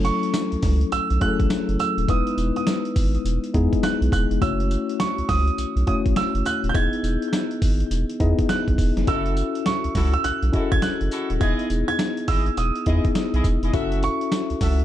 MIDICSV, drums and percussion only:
0, 0, Header, 1, 2, 480
1, 0, Start_track
1, 0, Tempo, 582524
1, 1720, Time_signature, 4, 2, 24, 8
1, 12235, End_track
2, 0, Start_track
2, 0, Title_t, "Drums"
2, 37, Note_on_c, 9, 54, 58
2, 38, Note_on_c, 9, 42, 74
2, 120, Note_off_c, 9, 54, 0
2, 121, Note_off_c, 9, 42, 0
2, 190, Note_on_c, 9, 42, 61
2, 272, Note_off_c, 9, 42, 0
2, 277, Note_on_c, 9, 38, 121
2, 277, Note_on_c, 9, 42, 87
2, 281, Note_on_c, 9, 54, 94
2, 359, Note_off_c, 9, 38, 0
2, 360, Note_off_c, 9, 42, 0
2, 363, Note_off_c, 9, 54, 0
2, 428, Note_on_c, 9, 42, 52
2, 510, Note_off_c, 9, 42, 0
2, 514, Note_on_c, 9, 54, 68
2, 515, Note_on_c, 9, 46, 89
2, 516, Note_on_c, 9, 38, 58
2, 518, Note_on_c, 9, 36, 99
2, 596, Note_off_c, 9, 54, 0
2, 598, Note_off_c, 9, 46, 0
2, 599, Note_off_c, 9, 38, 0
2, 600, Note_off_c, 9, 36, 0
2, 669, Note_on_c, 9, 42, 51
2, 751, Note_off_c, 9, 42, 0
2, 758, Note_on_c, 9, 42, 87
2, 758, Note_on_c, 9, 54, 74
2, 840, Note_off_c, 9, 54, 0
2, 841, Note_off_c, 9, 42, 0
2, 909, Note_on_c, 9, 42, 60
2, 992, Note_off_c, 9, 42, 0
2, 998, Note_on_c, 9, 42, 76
2, 1001, Note_on_c, 9, 36, 95
2, 1080, Note_off_c, 9, 42, 0
2, 1083, Note_off_c, 9, 36, 0
2, 1150, Note_on_c, 9, 36, 97
2, 1151, Note_on_c, 9, 42, 60
2, 1233, Note_off_c, 9, 36, 0
2, 1233, Note_off_c, 9, 42, 0
2, 1237, Note_on_c, 9, 42, 85
2, 1238, Note_on_c, 9, 38, 124
2, 1239, Note_on_c, 9, 54, 102
2, 1320, Note_off_c, 9, 38, 0
2, 1320, Note_off_c, 9, 42, 0
2, 1322, Note_off_c, 9, 54, 0
2, 1391, Note_on_c, 9, 42, 55
2, 1473, Note_off_c, 9, 42, 0
2, 1479, Note_on_c, 9, 42, 73
2, 1482, Note_on_c, 9, 54, 86
2, 1561, Note_off_c, 9, 42, 0
2, 1564, Note_off_c, 9, 54, 0
2, 1632, Note_on_c, 9, 42, 53
2, 1714, Note_off_c, 9, 42, 0
2, 1717, Note_on_c, 9, 42, 82
2, 1717, Note_on_c, 9, 54, 71
2, 1718, Note_on_c, 9, 36, 120
2, 1799, Note_off_c, 9, 54, 0
2, 1800, Note_off_c, 9, 36, 0
2, 1800, Note_off_c, 9, 42, 0
2, 1869, Note_on_c, 9, 42, 54
2, 1952, Note_off_c, 9, 42, 0
2, 1959, Note_on_c, 9, 54, 60
2, 1960, Note_on_c, 9, 42, 75
2, 2041, Note_off_c, 9, 54, 0
2, 2042, Note_off_c, 9, 42, 0
2, 2112, Note_on_c, 9, 42, 57
2, 2194, Note_off_c, 9, 42, 0
2, 2198, Note_on_c, 9, 38, 115
2, 2199, Note_on_c, 9, 42, 75
2, 2202, Note_on_c, 9, 54, 92
2, 2281, Note_off_c, 9, 38, 0
2, 2281, Note_off_c, 9, 42, 0
2, 2284, Note_off_c, 9, 54, 0
2, 2351, Note_on_c, 9, 42, 53
2, 2433, Note_off_c, 9, 42, 0
2, 2438, Note_on_c, 9, 54, 71
2, 2439, Note_on_c, 9, 36, 99
2, 2439, Note_on_c, 9, 46, 90
2, 2520, Note_off_c, 9, 54, 0
2, 2521, Note_off_c, 9, 36, 0
2, 2522, Note_off_c, 9, 46, 0
2, 2593, Note_on_c, 9, 42, 53
2, 2675, Note_off_c, 9, 42, 0
2, 2683, Note_on_c, 9, 42, 96
2, 2683, Note_on_c, 9, 54, 68
2, 2765, Note_off_c, 9, 42, 0
2, 2765, Note_off_c, 9, 54, 0
2, 2832, Note_on_c, 9, 42, 57
2, 2915, Note_off_c, 9, 42, 0
2, 2920, Note_on_c, 9, 42, 75
2, 2922, Note_on_c, 9, 36, 93
2, 3002, Note_off_c, 9, 42, 0
2, 3004, Note_off_c, 9, 36, 0
2, 3071, Note_on_c, 9, 36, 94
2, 3072, Note_on_c, 9, 42, 60
2, 3154, Note_off_c, 9, 36, 0
2, 3155, Note_off_c, 9, 42, 0
2, 3158, Note_on_c, 9, 38, 122
2, 3158, Note_on_c, 9, 42, 77
2, 3159, Note_on_c, 9, 54, 101
2, 3240, Note_off_c, 9, 42, 0
2, 3241, Note_off_c, 9, 38, 0
2, 3242, Note_off_c, 9, 54, 0
2, 3314, Note_on_c, 9, 42, 59
2, 3396, Note_off_c, 9, 42, 0
2, 3397, Note_on_c, 9, 36, 100
2, 3400, Note_on_c, 9, 42, 75
2, 3402, Note_on_c, 9, 54, 85
2, 3479, Note_off_c, 9, 36, 0
2, 3482, Note_off_c, 9, 42, 0
2, 3485, Note_off_c, 9, 54, 0
2, 3553, Note_on_c, 9, 42, 57
2, 3635, Note_off_c, 9, 42, 0
2, 3639, Note_on_c, 9, 36, 120
2, 3639, Note_on_c, 9, 42, 79
2, 3639, Note_on_c, 9, 54, 73
2, 3721, Note_off_c, 9, 54, 0
2, 3722, Note_off_c, 9, 36, 0
2, 3722, Note_off_c, 9, 42, 0
2, 3792, Note_on_c, 9, 42, 56
2, 3874, Note_off_c, 9, 42, 0
2, 3880, Note_on_c, 9, 54, 67
2, 3881, Note_on_c, 9, 42, 70
2, 3962, Note_off_c, 9, 54, 0
2, 3963, Note_off_c, 9, 42, 0
2, 4033, Note_on_c, 9, 42, 60
2, 4116, Note_off_c, 9, 42, 0
2, 4119, Note_on_c, 9, 38, 126
2, 4119, Note_on_c, 9, 42, 80
2, 4123, Note_on_c, 9, 54, 102
2, 4201, Note_off_c, 9, 38, 0
2, 4202, Note_off_c, 9, 42, 0
2, 4205, Note_off_c, 9, 54, 0
2, 4272, Note_on_c, 9, 42, 51
2, 4354, Note_off_c, 9, 42, 0
2, 4358, Note_on_c, 9, 54, 67
2, 4359, Note_on_c, 9, 36, 103
2, 4359, Note_on_c, 9, 46, 81
2, 4360, Note_on_c, 9, 38, 64
2, 4440, Note_off_c, 9, 54, 0
2, 4442, Note_off_c, 9, 36, 0
2, 4442, Note_off_c, 9, 46, 0
2, 4443, Note_off_c, 9, 38, 0
2, 4512, Note_on_c, 9, 42, 50
2, 4594, Note_off_c, 9, 42, 0
2, 4600, Note_on_c, 9, 54, 73
2, 4601, Note_on_c, 9, 42, 90
2, 4683, Note_off_c, 9, 42, 0
2, 4683, Note_off_c, 9, 54, 0
2, 4752, Note_on_c, 9, 42, 55
2, 4834, Note_off_c, 9, 42, 0
2, 4838, Note_on_c, 9, 42, 80
2, 4841, Note_on_c, 9, 36, 91
2, 4920, Note_off_c, 9, 42, 0
2, 4923, Note_off_c, 9, 36, 0
2, 4991, Note_on_c, 9, 36, 98
2, 4991, Note_on_c, 9, 42, 65
2, 5073, Note_off_c, 9, 36, 0
2, 5073, Note_off_c, 9, 42, 0
2, 5077, Note_on_c, 9, 42, 81
2, 5078, Note_on_c, 9, 38, 127
2, 5079, Note_on_c, 9, 54, 92
2, 5160, Note_off_c, 9, 38, 0
2, 5160, Note_off_c, 9, 42, 0
2, 5162, Note_off_c, 9, 54, 0
2, 5232, Note_on_c, 9, 42, 57
2, 5315, Note_off_c, 9, 42, 0
2, 5319, Note_on_c, 9, 42, 76
2, 5322, Note_on_c, 9, 54, 85
2, 5401, Note_off_c, 9, 42, 0
2, 5404, Note_off_c, 9, 54, 0
2, 5472, Note_on_c, 9, 42, 54
2, 5554, Note_off_c, 9, 42, 0
2, 5558, Note_on_c, 9, 36, 127
2, 5558, Note_on_c, 9, 54, 75
2, 5559, Note_on_c, 9, 42, 82
2, 5641, Note_off_c, 9, 36, 0
2, 5641, Note_off_c, 9, 42, 0
2, 5641, Note_off_c, 9, 54, 0
2, 5710, Note_on_c, 9, 42, 55
2, 5793, Note_off_c, 9, 42, 0
2, 5799, Note_on_c, 9, 54, 65
2, 5800, Note_on_c, 9, 42, 75
2, 5882, Note_off_c, 9, 54, 0
2, 5883, Note_off_c, 9, 42, 0
2, 5952, Note_on_c, 9, 42, 63
2, 6034, Note_off_c, 9, 42, 0
2, 6038, Note_on_c, 9, 38, 121
2, 6038, Note_on_c, 9, 42, 79
2, 6042, Note_on_c, 9, 54, 101
2, 6120, Note_off_c, 9, 38, 0
2, 6121, Note_off_c, 9, 42, 0
2, 6124, Note_off_c, 9, 54, 0
2, 6188, Note_on_c, 9, 42, 49
2, 6270, Note_off_c, 9, 42, 0
2, 6277, Note_on_c, 9, 54, 67
2, 6278, Note_on_c, 9, 46, 93
2, 6279, Note_on_c, 9, 36, 97
2, 6360, Note_off_c, 9, 54, 0
2, 6361, Note_off_c, 9, 36, 0
2, 6361, Note_off_c, 9, 46, 0
2, 6430, Note_on_c, 9, 42, 54
2, 6512, Note_off_c, 9, 42, 0
2, 6519, Note_on_c, 9, 42, 93
2, 6519, Note_on_c, 9, 54, 69
2, 6601, Note_off_c, 9, 54, 0
2, 6602, Note_off_c, 9, 42, 0
2, 6671, Note_on_c, 9, 42, 57
2, 6753, Note_off_c, 9, 42, 0
2, 6757, Note_on_c, 9, 42, 77
2, 6761, Note_on_c, 9, 36, 94
2, 6840, Note_off_c, 9, 42, 0
2, 6844, Note_off_c, 9, 36, 0
2, 6910, Note_on_c, 9, 42, 63
2, 6911, Note_on_c, 9, 36, 96
2, 6992, Note_off_c, 9, 42, 0
2, 6993, Note_off_c, 9, 36, 0
2, 6996, Note_on_c, 9, 42, 79
2, 6997, Note_on_c, 9, 38, 127
2, 6998, Note_on_c, 9, 54, 97
2, 7079, Note_off_c, 9, 38, 0
2, 7079, Note_off_c, 9, 42, 0
2, 7081, Note_off_c, 9, 54, 0
2, 7150, Note_on_c, 9, 36, 98
2, 7151, Note_on_c, 9, 42, 55
2, 7232, Note_off_c, 9, 36, 0
2, 7233, Note_off_c, 9, 42, 0
2, 7236, Note_on_c, 9, 36, 95
2, 7237, Note_on_c, 9, 46, 68
2, 7240, Note_on_c, 9, 54, 81
2, 7319, Note_off_c, 9, 36, 0
2, 7320, Note_off_c, 9, 46, 0
2, 7322, Note_off_c, 9, 54, 0
2, 7391, Note_on_c, 9, 38, 56
2, 7391, Note_on_c, 9, 42, 57
2, 7473, Note_off_c, 9, 42, 0
2, 7474, Note_off_c, 9, 38, 0
2, 7476, Note_on_c, 9, 42, 85
2, 7476, Note_on_c, 9, 54, 69
2, 7478, Note_on_c, 9, 36, 127
2, 7558, Note_off_c, 9, 42, 0
2, 7558, Note_off_c, 9, 54, 0
2, 7561, Note_off_c, 9, 36, 0
2, 7628, Note_on_c, 9, 42, 55
2, 7710, Note_off_c, 9, 42, 0
2, 7718, Note_on_c, 9, 42, 68
2, 7718, Note_on_c, 9, 54, 63
2, 7800, Note_off_c, 9, 54, 0
2, 7801, Note_off_c, 9, 42, 0
2, 7871, Note_on_c, 9, 42, 57
2, 7954, Note_off_c, 9, 42, 0
2, 7958, Note_on_c, 9, 38, 118
2, 7958, Note_on_c, 9, 42, 79
2, 7962, Note_on_c, 9, 54, 93
2, 8040, Note_off_c, 9, 38, 0
2, 8041, Note_off_c, 9, 42, 0
2, 8044, Note_off_c, 9, 54, 0
2, 8110, Note_on_c, 9, 42, 52
2, 8193, Note_off_c, 9, 42, 0
2, 8197, Note_on_c, 9, 54, 68
2, 8199, Note_on_c, 9, 46, 84
2, 8200, Note_on_c, 9, 36, 95
2, 8200, Note_on_c, 9, 38, 58
2, 8280, Note_off_c, 9, 54, 0
2, 8281, Note_off_c, 9, 46, 0
2, 8282, Note_off_c, 9, 36, 0
2, 8282, Note_off_c, 9, 38, 0
2, 8350, Note_on_c, 9, 42, 52
2, 8433, Note_off_c, 9, 42, 0
2, 8439, Note_on_c, 9, 42, 95
2, 8439, Note_on_c, 9, 54, 76
2, 8521, Note_off_c, 9, 42, 0
2, 8521, Note_off_c, 9, 54, 0
2, 8590, Note_on_c, 9, 42, 59
2, 8673, Note_off_c, 9, 42, 0
2, 8680, Note_on_c, 9, 42, 77
2, 8682, Note_on_c, 9, 36, 97
2, 8762, Note_off_c, 9, 42, 0
2, 8765, Note_off_c, 9, 36, 0
2, 8832, Note_on_c, 9, 36, 98
2, 8832, Note_on_c, 9, 42, 66
2, 8914, Note_off_c, 9, 42, 0
2, 8915, Note_off_c, 9, 36, 0
2, 8917, Note_on_c, 9, 42, 82
2, 8918, Note_on_c, 9, 38, 121
2, 8919, Note_on_c, 9, 54, 100
2, 8999, Note_off_c, 9, 42, 0
2, 9000, Note_off_c, 9, 38, 0
2, 9001, Note_off_c, 9, 54, 0
2, 9071, Note_on_c, 9, 42, 54
2, 9153, Note_off_c, 9, 42, 0
2, 9158, Note_on_c, 9, 42, 75
2, 9161, Note_on_c, 9, 54, 80
2, 9240, Note_off_c, 9, 42, 0
2, 9243, Note_off_c, 9, 54, 0
2, 9311, Note_on_c, 9, 42, 55
2, 9394, Note_off_c, 9, 42, 0
2, 9399, Note_on_c, 9, 42, 88
2, 9399, Note_on_c, 9, 54, 73
2, 9400, Note_on_c, 9, 36, 127
2, 9481, Note_off_c, 9, 54, 0
2, 9482, Note_off_c, 9, 42, 0
2, 9483, Note_off_c, 9, 36, 0
2, 9551, Note_on_c, 9, 42, 54
2, 9634, Note_off_c, 9, 42, 0
2, 9640, Note_on_c, 9, 54, 65
2, 9641, Note_on_c, 9, 42, 75
2, 9723, Note_off_c, 9, 54, 0
2, 9724, Note_off_c, 9, 42, 0
2, 9793, Note_on_c, 9, 42, 58
2, 9875, Note_off_c, 9, 42, 0
2, 9879, Note_on_c, 9, 38, 112
2, 9880, Note_on_c, 9, 42, 88
2, 9883, Note_on_c, 9, 54, 101
2, 9962, Note_off_c, 9, 38, 0
2, 9962, Note_off_c, 9, 42, 0
2, 9966, Note_off_c, 9, 54, 0
2, 10030, Note_on_c, 9, 42, 51
2, 10113, Note_off_c, 9, 42, 0
2, 10116, Note_on_c, 9, 54, 72
2, 10118, Note_on_c, 9, 46, 92
2, 10119, Note_on_c, 9, 36, 95
2, 10199, Note_off_c, 9, 54, 0
2, 10200, Note_off_c, 9, 46, 0
2, 10202, Note_off_c, 9, 36, 0
2, 10270, Note_on_c, 9, 42, 50
2, 10352, Note_off_c, 9, 42, 0
2, 10360, Note_on_c, 9, 42, 96
2, 10360, Note_on_c, 9, 54, 70
2, 10442, Note_off_c, 9, 54, 0
2, 10443, Note_off_c, 9, 42, 0
2, 10510, Note_on_c, 9, 42, 56
2, 10592, Note_off_c, 9, 42, 0
2, 10597, Note_on_c, 9, 42, 77
2, 10601, Note_on_c, 9, 36, 86
2, 10679, Note_off_c, 9, 42, 0
2, 10684, Note_off_c, 9, 36, 0
2, 10749, Note_on_c, 9, 42, 57
2, 10751, Note_on_c, 9, 36, 102
2, 10832, Note_off_c, 9, 42, 0
2, 10833, Note_off_c, 9, 36, 0
2, 10837, Note_on_c, 9, 42, 87
2, 10838, Note_on_c, 9, 38, 127
2, 10839, Note_on_c, 9, 54, 99
2, 10920, Note_off_c, 9, 38, 0
2, 10920, Note_off_c, 9, 42, 0
2, 10922, Note_off_c, 9, 54, 0
2, 10991, Note_on_c, 9, 42, 52
2, 11074, Note_off_c, 9, 42, 0
2, 11077, Note_on_c, 9, 36, 101
2, 11077, Note_on_c, 9, 42, 75
2, 11080, Note_on_c, 9, 54, 81
2, 11159, Note_off_c, 9, 36, 0
2, 11159, Note_off_c, 9, 42, 0
2, 11162, Note_off_c, 9, 54, 0
2, 11230, Note_on_c, 9, 42, 57
2, 11313, Note_off_c, 9, 42, 0
2, 11317, Note_on_c, 9, 54, 71
2, 11318, Note_on_c, 9, 36, 127
2, 11318, Note_on_c, 9, 42, 82
2, 11400, Note_off_c, 9, 42, 0
2, 11400, Note_off_c, 9, 54, 0
2, 11401, Note_off_c, 9, 36, 0
2, 11469, Note_on_c, 9, 42, 59
2, 11551, Note_off_c, 9, 42, 0
2, 11557, Note_on_c, 9, 54, 63
2, 11558, Note_on_c, 9, 42, 76
2, 11640, Note_off_c, 9, 54, 0
2, 11641, Note_off_c, 9, 42, 0
2, 11711, Note_on_c, 9, 42, 57
2, 11794, Note_off_c, 9, 42, 0
2, 11797, Note_on_c, 9, 38, 119
2, 11798, Note_on_c, 9, 42, 79
2, 11801, Note_on_c, 9, 54, 97
2, 11880, Note_off_c, 9, 38, 0
2, 11880, Note_off_c, 9, 42, 0
2, 11884, Note_off_c, 9, 54, 0
2, 11948, Note_on_c, 9, 42, 49
2, 12031, Note_off_c, 9, 42, 0
2, 12037, Note_on_c, 9, 54, 70
2, 12038, Note_on_c, 9, 36, 96
2, 12038, Note_on_c, 9, 46, 90
2, 12039, Note_on_c, 9, 38, 59
2, 12119, Note_off_c, 9, 54, 0
2, 12120, Note_off_c, 9, 46, 0
2, 12121, Note_off_c, 9, 36, 0
2, 12121, Note_off_c, 9, 38, 0
2, 12191, Note_on_c, 9, 42, 53
2, 12235, Note_off_c, 9, 42, 0
2, 12235, End_track
0, 0, End_of_file